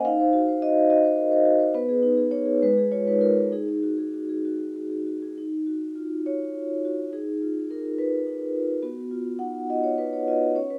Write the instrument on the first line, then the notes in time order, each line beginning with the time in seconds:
vibraphone
0.05 D#4 F5
0.20 C5
0.33 F#4
0.48 C5
0.62 F#4 D#5
0.77 C5
0.90 F#4 D#5
1.05 C5
1.18 A#4
1.31 C5
1.46 F#4
1.60 C5
1.74 B3 B4
1.89 G#4
2.03 D#4
2.17 G#4
2.31 D#4 C#5
2.46 G#4
2.62 G#3 B4
2.78 G#4
2.92 F4 C#5
3.07 D#4 B4
3.21 F4 A#4
3.37 G#4
3.52 D#4 G#4
3.68 G#4
3.83 F#4
3.98 G#4
4.14 F#4
4.29 G#4
4.45 F#4
4.59 G#4
4.76 F#4
4.90 G#4
5.07 F#4
5.22 G#4
5.38 D#4
5.67 F#4
5.95 F4
6.26 F#4 C#5
6.55 F4
6.85 F#4
7.13 D#4 G#4
7.42 F4
7.70 D#4 A#4
7.98 F4 B4
8.27 D#4
8.55 F4
8.82 B3 F#4
9.11 F4
9.39 D#4 F#5
9.70 F4 D#5
9.84 C#5
9.98 D#4 B4
10.13 C#5
10.27 F4 D#5
10.55 C#4 C#5
10.70 B4